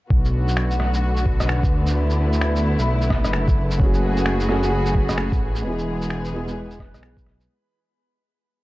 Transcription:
0.10 detuned saw bass B1, string section D3 A3 B3 F#4, synth texture B4, kick
0.25 shaker
0.48 shaker
0.57 finger snap
0.71 shaker
0.80 cross-stick
0.94 shaker
1.17 shaker
1.26 kick
1.40 cross-stick, shaker
1.49 finger snap
1.63 detuned saw bass D2, kick, shaker
1.87 shaker
1.95 string section E4
2.10 shaker
2.33 shaker
2.41 finger snap
2.56 shaker
2.79 detuned saw bass B1, shaker
3.02 shaker
3.10 kick, cross-stick
3.25 detuned saw bass F#1, cross-stick, shaker
3.33 finger snap
3.48 kick, shaker
3.71 shaker
3.77 detuned saw bass F#1, string section C#3 F#4 G#4, felt piano A3 C#4, kick
3.82 felt piano F#4 G#4
3.94 shaker
4.17 shaker
4.26 finger snap
4.40 shaker
4.48 felt piano A3 C#4 F#4 G#4, cross-stick
4.61 felt piano A3 C#4, shaker
4.66 felt piano F#4 G#4
4.86 shaker
4.95 kick
5.09 cross-stick, shaker
5.18 finger snap
5.32 detuned saw bass A1, kick, shaker
5.56 shaker
5.62 detuned saw bass E1, string section E3 G#3 B3 G#4, felt piano G#3 B3
5.67 felt piano E4 G#4
5.79 shaker
6.02 shaker
6.10 finger snap
6.25 shaker
6.32 felt piano G#3 B3 E4 G#4
6.45 detuned saw bass E1, felt piano G#3 B3, shaker
6.51 felt piano E4 G#4
6.71 shaker
6.79 kick, cross-stick
6.93 detuned saw bass B1, cross-stick, shaker
7.03 finger snap
7.17 kick, shaker
7.26 cross-stick
7.41 shaker

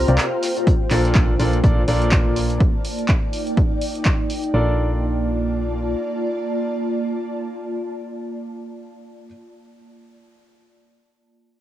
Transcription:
Already playing: ambient pad A#3 F4 C5 G5, analog synth pad C5 A#5 F6
0.08 fm bass C2, grand piano C3 C4 F4 G4 A#4 D5, closed hi-hat
0.18 snare, clap, closed hi-hat
0.43 snare, closed hi-hat, open hi-hat
0.57 closed hi-hat
0.67 kick, closed hi-hat
0.91 fm bass A#1, grand piano A#2 D4 F4 A4 A#4 D5, clap, closed hi-hat, open hi-hat
1.05 snare, closed hi-hat
1.15 fm bass A#1, grand piano A#2 D4 A#4 D5, kick, snare, clap, closed hi-hat
1.39 fm bass A#1, grand piano A#2 D4 F4 A4 A#4 D5, snare, closed hi-hat, open hi-hat
1.53 ambient pad D5 A5, closed hi-hat
1.64 fm bass A#1, grand piano A#2 D4 F4 A4 A#4 D5, kick, closed hi-hat
1.88 fm bass A#1, grand piano A#2 D4 F4 A4 A#4 D5, closed hi-hat, open hi-hat
2.02 closed hi-hat
2.12 kick, snare, clap, closed hi-hat
2.36 closed hi-hat, open hi-hat
2.50 closed hi-hat
2.60 ambient pad D#4, kick, closed hi-hat
2.85 open hi-hat
2.99 ambient pad G5, closed hi-hat
3.08 kick, clap, closed hi-hat
3.33 open hi-hat
3.47 closed hi-hat
3.57 kick, closed hi-hat
3.81 open hi-hat
3.95 closed hi-hat
4.05 kick, clap, closed hi-hat
4.30 open hi-hat
4.44 closed hi-hat
4.54 fm bass A#1, grand piano D4 F4 A4 A#4 D5, ambient pad F4
4.62 ambient pad A#3
4.70 ambient pad D5
4.76 ambient pad A5

